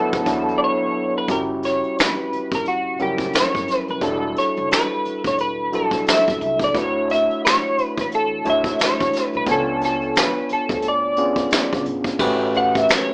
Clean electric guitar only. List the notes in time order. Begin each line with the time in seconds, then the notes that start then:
Already playing: A4
0.58 D5
0.64 C#5
1.18 B4
1.31 A#4
1.65 C#5
2.00 B4
2.55 A#4
2.68 F#4
3.02 G4
3.35 C#5
3.79 B4
3.91 B4
4.03 A4
4.38 C#5
4.72 B4
5.27 C#5
5.41 B4
5.75 A4
6.09 E5
6.64 D5
6.77 C#5
7.11 E5
7.45 C#5
8.01 B4
8.15 A4
8.50 E5
8.83 C#5
9.26 B4
9.37 B4
9.51 A4
9.85 A4
10.20 B4
10.53 A4
10.88 D5
12.57 F#5
12.78 E5
12.91 C#5